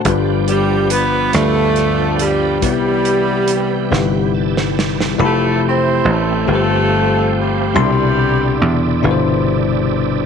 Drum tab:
HH |x-x-x-x-x-x-|x-x-x-------|------------|------------|
SD |------r-r---|------o--ooo|------------|------------|
BD |o-----------|o-----------|------------|------------|